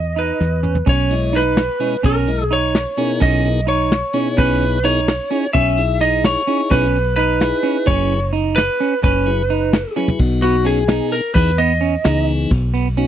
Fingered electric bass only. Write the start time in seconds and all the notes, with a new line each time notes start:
Already playing: E2
0.40 E2
0.87 B1
2.04 B1
3.21 B1
4.38 B1
5.55 B1
6.71 B1
7.88 F#1
9.04 F#1
10.19 B1
11.36 E2
12.05 C#2
12.51 B1